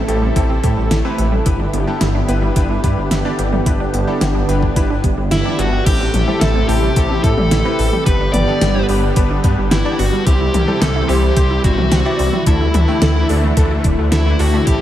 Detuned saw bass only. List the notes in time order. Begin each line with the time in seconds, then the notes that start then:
0.08 A1
0.36 A1
0.64 A2
0.77 A1
0.91 A1
1.18 A1
1.46 G1
1.74 G1
2.01 G1
2.29 G1
2.56 G1
2.84 G2
2.98 G1
3.11 G1
3.39 G1
3.66 G1
3.94 G1
4.21 G1
4.49 G1
4.76 G1
5.04 G1
5.18 G1
5.31 G1
5.59 G1
5.86 A1
6.14 A1
6.41 A1
6.69 A1
6.96 A1
7.24 A2
7.38 A1
7.51 A1
7.79 A1
8.06 G1
8.34 G1
8.61 G1
8.89 G1
9.16 G1
9.44 G2
9.58 G1
9.71 G1
9.99 G1
10.27 C2
10.54 C2
10.82 C2
11.09 C2
11.37 C2
11.64 G1
11.78 C2
11.92 C2
12.19 C2
12.47 D2
12.74 D2
13.02 D2
13.29 D2
13.57 D2
13.85 D1
13.98 D2
14.12 D2
14.40 D2
14.67 A1